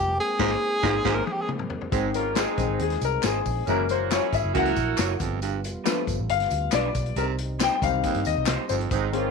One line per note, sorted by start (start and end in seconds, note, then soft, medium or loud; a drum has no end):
0.00 0.18 F1 medium
0.00 0.15 F3 medium
0.00 0.15 G3 medium
0.00 0.14 B3 medium
0.00 0.19 G4 loud
0.17 1.91 G#3 medium
0.17 1.91 A#3 medium
0.17 1.91 C4 medium
0.17 1.15 G#4 loud
0.39 0.54 G#1 loud
0.39 0.51 G#2 loud
0.39 0.54 A#3 medium
0.39 0.55 A#3 medium
0.39 0.55 D#4 medium
0.39 0.55 G#4 medium
0.39 0.55 G#4 loud
0.39 0.55 C5 medium
0.39 kick loud
0.39 snare loud
0.39 crash medium
0.83 0.98 G#1 medium
0.83 0.94 G#2 medium
0.83 0.98 A#3 medium
0.83 0.98 D#4 medium
0.83 0.99 G#4 medium
0.83 0.99 C5 medium
0.83 kick loud
0.83 snare loud
1.04 1.20 G#1 loud
1.04 1.16 G#2 loud
1.04 1.20 A#3 medium
1.04 1.20 D#4 medium
1.04 1.21 D#4 loud
1.04 1.20 G#4 medium
1.04 1.21 G#4 loud
1.04 1.20 C5 medium
1.04 1.21 C5 medium
1.04 kick loud
1.04 snare medium
1.04 crash medium
1.14 1.27 A#4 medium
1.25 1.34 G#4 medium
1.25 high tom medium
1.33 1.43 G4 medium
1.42 1.50 G#4 medium
1.49 mid tom medium
1.59 mid tom medium
1.70 floor tom medium
1.81 floor tom medium
1.92 2.44 G#1 medium
1.92 2.10 G#2 medium
1.92 2.21 D#3 medium
1.92 2.21 G#3 soft
1.92 3.65 G#3 medium
1.92 2.10 G#3 medium
1.92 3.65 C4 medium
1.92 2.10 C4 medium
1.92 2.22 C4 medium
1.92 3.65 D#4 medium
1.92 2.10 D#4 medium
1.92 kick loud
1.92 closed hi-hat medium
1.92 tambourine soft
2.14 2.32 A#3 medium
2.14 2.32 C#4 medium
2.14 2.32 F4 medium
2.14 2.37 A#4 medium
2.14 closed hi-hat medium
2.14 tambourine soft
2.35 2.98 G#3 medium
2.35 2.50 C4 medium
2.35 2.98 C4 medium
2.35 2.50 D#4 medium
2.35 2.98 D#4 loud
2.35 2.50 G#4 medium
2.35 2.78 G#4 medium
2.35 2.51 C5 medium
2.35 snare loud
2.35 clap medium
2.35 closed hi-hat medium
2.35 tambourine medium
2.58 2.66 A#1 medium
2.58 2.78 D#3 soft
2.58 2.78 G#3 soft
2.58 2.79 C4 soft
2.58 kick medium
2.58 closed hi-hat medium
2.58 tambourine soft
2.69 2.77 G#1 medium
2.79 2.96 D#2 medium
2.79 3.01 G#4 medium
2.79 closed hi-hat medium
2.90 snare soft
2.90 closed hi-hat soft
3.01 3.18 C2 medium
3.01 3.26 A#4 medium
3.01 closed hi-hat medium
3.01 tambourine soft
3.23 3.40 G#1 medium
3.23 3.37 C4 medium
3.23 3.38 D#4 medium
3.23 3.38 G#4 medium
3.23 3.70 G#4 medium
3.23 3.38 C5 medium
3.23 snare loud
3.23 clap medium
3.23 closed hi-hat medium
3.23 tambourine medium
3.46 3.61 A#1 medium
3.46 kick medium
3.46 open hi-hat medium
3.46 tambourine medium
3.67 4.19 F#1 loud
3.67 3.85 F#2 medium
3.67 3.97 E3 medium
3.67 5.19 F#3 medium
3.67 3.97 G#3 soft
3.67 3.85 A#3 medium
3.67 5.19 A#3 medium
3.67 3.97 A#3 medium
3.67 3.84 C#4 medium
3.67 3.85 E4 loud
3.67 5.19 E4 medium
3.67 3.91 A#4 medium
3.67 closed hi-hat medium
3.67 tambourine soft
3.89 4.07 A#3 medium
3.89 4.06 C#4 medium
3.89 4.07 F#4 medium
3.89 4.13 C5 medium
3.89 closed hi-hat medium
3.89 tambourine soft
4.10 4.25 A#3 medium
4.10 4.52 C#4 medium
4.10 4.52 E4 loud
4.10 4.25 E4 medium
4.10 4.25 F#4 medium
4.10 4.52 G#4 loud
4.10 4.26 C#5 medium
4.10 4.35 C#5 medium
4.10 snare loud
4.10 clap medium
4.10 closed hi-hat medium
4.10 tambourine medium
4.33 4.41 G#1 medium
4.33 4.56 E5 medium
4.33 kick medium
4.33 closed hi-hat medium
4.33 tambourine soft
4.44 4.52 F#1 medium
4.54 4.71 C#2 medium
4.54 4.72 F#2 medium
4.54 4.75 E3 soft
4.54 4.75 G#3 soft
4.54 4.75 A#3 medium
4.54 5.16 E4 loud
4.54 5.16 F#4 loud
4.54 5.16 A#4 loud
4.54 5.17 F#5 medium
4.54 kick medium
4.54 closed hi-hat medium
4.66 snare soft
4.66 closed hi-hat soft
4.76 4.93 A#1 medium
4.76 kick medium
4.76 closed hi-hat medium
4.76 tambourine soft
4.97 5.15 F#1 medium
4.97 5.12 A#3 medium
4.97 5.12 E4 medium
4.97 5.12 F#4 medium
4.97 5.13 C#5 medium
4.97 snare loud
4.97 clap medium
4.97 closed hi-hat loud
4.97 tambourine medium
5.20 5.76 G1 medium
5.20 5.38 F2 medium
5.20 8.87 G3 medium
5.20 7.15 B3 medium
5.20 7.15 F4 medium
5.20 kick loud
5.20 closed hi-hat medium
5.20 tambourine medium
5.42 5.59 G2 medium
5.42 closed hi-hat medium
5.42 tambourine soft
5.64 closed hi-hat medium
5.64 tambourine soft
5.84 6.15 F3 medium
5.84 5.99 G3 medium
5.84 6.15 A3 medium
5.84 6.15 B3 medium
5.84 6.00 D4 medium
5.84 6.00 F4 medium
5.84 6.00 B4 medium
5.84 snare loud
5.84 clap medium
5.84 closed hi-hat medium
5.84 tambourine loud
6.07 6.16 G1 medium
6.07 kick medium
6.07 closed hi-hat medium
6.07 tambourine soft
6.19 6.27 A1 medium
6.29 6.46 G1 loud
6.29 6.70 F5 loud
6.29 closed hi-hat medium
6.40 snare soft
6.40 closed hi-hat medium
6.50 6.67 D2 medium
6.50 closed hi-hat medium
6.50 tambourine soft
6.72 6.89 B1 medium
6.72 6.87 G3 medium
6.72 6.87 D4 medium
6.72 6.87 F4 medium
6.72 6.87 B4 medium
6.72 7.14 D5 medium
6.72 snare loud
6.72 clap medium
6.72 closed hi-hat medium
6.72 tambourine medium
6.94 7.11 B1 medium
6.94 kick medium
6.94 closed hi-hat medium
6.94 tambourine medium
7.06 closed hi-hat soft
7.16 7.68 C2 loud
7.16 7.34 C3 medium
7.16 9.31 C4 medium
7.16 8.90 D#4 medium
7.16 7.23 A#4 medium
7.16 closed hi-hat medium
7.16 tambourine soft
7.38 closed hi-hat medium
7.59 7.74 C4 medium
7.59 7.75 D#4 medium
7.59 7.75 G4 medium
7.59 7.75 C5 medium
7.59 7.74 G5 medium
7.59 snare loud
7.59 clap loud
7.59 closed hi-hat medium
7.59 tambourine medium
7.76 7.82 G5 medium
7.81 7.90 C#2 medium
7.81 8.44 D#3 medium
7.81 8.44 G3 soft
7.81 8.45 C4 medium
7.81 8.28 F5 medium
7.81 kick medium
7.81 closed hi-hat medium
7.81 tambourine medium
7.94 8.02 C2 medium
8.03 8.22 D#2 medium
8.03 kick medium
8.03 closed hi-hat medium
8.03 tambourine soft
8.14 8.23 G2 medium
8.14 closed hi-hat medium
8.25 8.34 D#2 medium
8.25 8.71 D#5 medium
8.25 closed hi-hat medium
8.25 tambourine soft
8.37 8.45 C2 medium
8.46 8.56 C2 medium
8.46 8.61 C4 medium
8.46 8.62 D#4 medium
8.46 8.62 G4 medium
8.46 8.62 C5 medium
8.46 snare loud
8.46 clap medium
8.46 closed hi-hat medium
8.46 tambourine loud
8.69 8.86 G1 medium
8.69 8.87 F2 medium
8.69 8.74 C5 medium
8.69 closed hi-hat medium
8.69 tambourine medium
8.80 closed hi-hat soft
8.91 9.31 G#1 loud
8.91 9.09 G#2 medium
8.91 9.09 G#3 loud
8.91 9.31 G#3 medium
8.91 9.09 C4 medium
8.91 9.31 D#4 medium
8.91 9.09 D#4 medium
8.91 kick loud
8.91 closed hi-hat medium
8.91 tambourine soft
9.12 9.31 D#3 soft
9.12 9.31 G#3 soft
9.12 9.31 A#3 medium
9.12 9.31 C4 medium
9.12 9.31 C#4 medium
9.12 9.31 F4 medium
9.12 closed hi-hat medium